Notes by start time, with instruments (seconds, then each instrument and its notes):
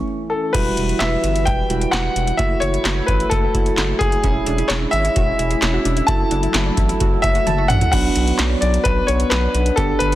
Already playing: analog synth pad E3 A3 C#4
0.30 grand piano A4
0.53 analog synth bass E1, analog synth pad E3 G3 E4 B4, synth keys G3 E4 F#4, grand piano B4, kick, closed hi-hat, crash
0.77 analog synth bass E1, closed hi-hat
0.89 closed hi-hat
0.99 analog synth bass E1, grand piano E5, snare, clap, closed hi-hat
1.24 analog synth bass G1, closed hi-hat
1.36 closed hi-hat
1.45 analog synth bass E1, grand piano G5, kick, closed hi-hat
1.70 analog synth bass E1, synth keys G3 E4 F#4, closed hi-hat
1.81 closed hi-hat
1.91 analog synth bass E1, grand piano F#5, snare, clap, closed hi-hat
2.16 analog synth bass E1, closed hi-hat
2.27 closed hi-hat
2.37 analog synth bass F#1, analog synth pad F#3 A3 E4, synth keys A3 E4 F#4, grand piano E5, kick, closed hi-hat
2.60 analog synth bass F#1, grand piano C#5, closed hi-hat
2.74 closed hi-hat
2.85 analog synth bass F#1, snare, clap, closed hi-hat
3.06 analog synth bass A1, grand piano B4, kick, closed hi-hat
3.20 closed hi-hat
3.30 analog synth bass F#1, grand piano A4, kick, closed hi-hat
3.54 analog synth bass F#1, synth keys A3 E4 F#4, kick, closed hi-hat
3.66 closed hi-hat
3.77 analog synth bass F#1, snare, clap, closed hi-hat
3.99 analog synth bass F#1, grand piano G#4, kick, closed hi-hat
4.12 closed hi-hat
4.23 analog synth bass E1, analog synth pad G#3 C#4 E4, synth keys C#4 E4 G#4, synth arpeggio sound E4, kick, closed hi-hat
4.46 analog synth bass E1, synth arpeggio sound D4, closed hi-hat
4.58 synth arpeggio sound E4, closed hi-hat
4.68 analog synth bass E1, synth arpeggio sound C#4, grand piano C#5, snare, clap, closed hi-hat
4.81 synth arpeggio sound D4
4.91 analog synth bass G#1, synth arpeggio sound E4, grand piano E5, closed hi-hat
5.04 synth arpeggio sound E4, closed hi-hat
5.16 analog synth bass E1, synth arpeggio sound F#4, kick, closed hi-hat
5.39 analog synth bass E1, synth arpeggio sound E4, closed hi-hat
5.51 synth arpeggio sound G#4, closed hi-hat
5.62 analog synth bass E1, synth arpeggio sound E4, snare, clap, closed hi-hat
5.74 synth arpeggio sound F#4
5.85 analog synth bass E1, synth arpeggio sound D4, closed hi-hat
5.97 synth arpeggio sound E4, closed hi-hat
6.07 analog synth bass F#1, analog synth pad F#3 A3, synth keys E4 F#4 A4, synth arpeggio sound E4, grand piano A5, kick, closed hi-hat
6.31 analog synth bass F#1, synth arpeggio sound D4, closed hi-hat
6.43 synth arpeggio sound E4, closed hi-hat
6.54 analog synth bass F#1, synth arpeggio sound C#4, snare, clap, closed hi-hat
6.66 synth arpeggio sound D4
6.77 analog synth bass A1, synth arpeggio sound E4, kick, closed hi-hat
6.89 synth arpeggio sound E4, closed hi-hat
7.00 analog synth bass F#1, synth arpeggio sound F#4, kick, closed hi-hat
7.22 analog synth bass F#1, synth arpeggio sound E4, grand piano E5, kick, closed hi-hat
7.35 synth arpeggio sound F#4, closed hi-hat
7.47 analog synth bass F#1, synth arpeggio sound E4, synth keys A5, closed hi-hat, high tom
7.58 synth arpeggio sound F#4
7.68 analog synth bass A1, synth arpeggio sound D4, grand piano F#5, synth keys F#5, closed hi-hat, mid tom
7.81 synth arpeggio sound E4, closed hi-hat, floor tom
7.92 analog synth bass B1, analog synth pad F#3 B3 D4, synth keys B3 D4 F#4 B4, grand piano F#5, kick, closed hi-hat, crash
8.16 analog synth bass B1, closed hi-hat
8.28 closed hi-hat
8.39 analog synth bass B1, snare, clap, closed hi-hat
8.61 analog synth bass B1, grand piano D5, closed hi-hat
8.74 closed hi-hat
8.84 analog synth bass B1, grand piano B4, kick, closed hi-hat
9.07 analog synth bass B1, grand piano C#5, closed hi-hat
9.20 closed hi-hat
9.30 analog synth bass B1, grand piano B4, snare, clap, closed hi-hat
9.54 analog synth bass B1, closed hi-hat
9.66 closed hi-hat
9.76 analog synth bass G1, analog synth pad G3 A3, synth keys B3 D4 G4 A4, grand piano A4, kick, closed hi-hat
9.99 analog synth bass G1, grand piano B4, closed hi-hat